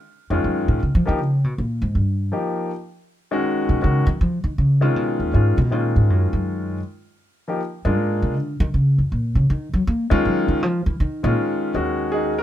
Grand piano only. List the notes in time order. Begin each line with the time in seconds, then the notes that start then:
0.30 D#3 G#3 C#4 F4
1.06 F3 A#3 D#4 G4
2.32 F3 A#3 D#4 G4
3.31 D#3 G#3 C#4 F#4
3.81 D#3 G#3 C#4 F#4
4.81 D#3 G#3 C#4 F4
5.34 D#3 G#3 C#4 F4
5.71 D#3 G#3 C#4 F4
7.48 F3 A#3 D#4 G4
7.85 G#3 A#3 D4 F4
10.10 D#3 G#3 C#4 F4
11.23 D#3 G#3 C#4 F4
11.75 D#3 G#3 C#4 F#4
12.12 D#4 G#4
12.38 A#4